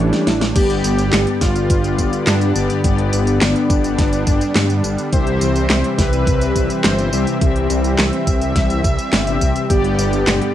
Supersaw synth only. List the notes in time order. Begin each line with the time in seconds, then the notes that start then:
Already playing: D4
0.56 G4
1.41 F4
2.27 D4
3.41 D4
5.13 C5
5.98 B4
6.84 C5
7.99 E5
9.70 G4